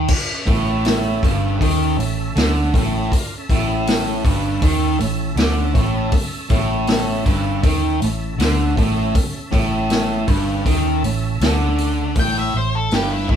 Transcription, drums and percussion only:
0.08 kick, crash
0.47 kick, open hi-hat
0.85 snare, open hi-hat
1.23 kick, open hi-hat
1.61 kick, open hi-hat
2.00 open hi-hat
2.36 snare, open hi-hat
2.74 kick, open hi-hat
3.12 kick, open hi-hat
3.49 kick, open hi-hat
3.87 snare, open hi-hat
4.25 kick, open hi-hat
4.62 kick, open hi-hat
5.00 open hi-hat
5.37 snare, open hi-hat
5.75 kick, open hi-hat
6.12 kick, open hi-hat
6.50 kick, open hi-hat
6.87 snare, open hi-hat
7.26 kick, open hi-hat
7.63 kick, open hi-hat
8.02 open hi-hat
8.40 snare, open hi-hat
8.77 kick, open hi-hat
9.15 kick, open hi-hat
9.53 kick, open hi-hat
9.90 snare, open hi-hat
10.28 kick, open hi-hat
10.66 kick, open hi-hat
11.04 open hi-hat
11.41 snare, open hi-hat
11.78 open hi-hat
12.15 kick, open hi-hat
12.91 snare, open hi-hat
13.29 kick

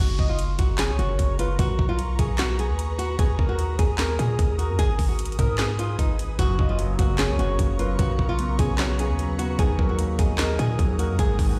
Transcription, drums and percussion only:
0.19 kick
0.39 closed hi-hat
0.59 kick, closed hi-hat
0.78 snare, clap, closed hi-hat
0.99 closed hi-hat
1.19 kick, closed hi-hat
1.39 closed hi-hat
1.59 kick, closed hi-hat
1.79 kick
1.99 closed hi-hat
2.19 kick, closed hi-hat
2.38 snare, clap, closed hi-hat
2.59 closed hi-hat
2.79 closed hi-hat
2.99 closed hi-hat
3.19 kick, closed hi-hat
3.39 kick
3.59 closed hi-hat
3.79 kick, closed hi-hat
3.98 snare, clap, closed hi-hat
4.19 closed hi-hat
4.39 kick, closed hi-hat
4.59 closed hi-hat
4.79 kick, closed hi-hat
4.99 kick, open hi-hat
5.19 closed hi-hat
5.25 closed hi-hat
5.32 closed hi-hat
5.39 kick, closed hi-hat
5.58 snare, clap, closed hi-hat
5.79 closed hi-hat
5.99 kick, closed hi-hat
6.19 closed hi-hat
6.39 kick, closed hi-hat
6.59 kick
6.79 closed hi-hat
6.99 kick, closed hi-hat
7.18 snare, clap, closed hi-hat
7.39 closed hi-hat
7.59 kick, closed hi-hat
7.79 closed hi-hat
7.99 kick, closed hi-hat
8.19 kick
8.39 closed hi-hat
8.59 kick, closed hi-hat
8.78 snare, clap, closed hi-hat
8.99 closed hi-hat
9.19 closed hi-hat
9.39 closed hi-hat
9.59 kick, closed hi-hat
9.79 kick
9.99 closed hi-hat
10.19 kick, closed hi-hat
10.38 snare, clap, closed hi-hat
10.59 closed hi-hat
10.79 kick, closed hi-hat
10.99 closed hi-hat
11.19 kick, closed hi-hat
11.39 kick, open hi-hat

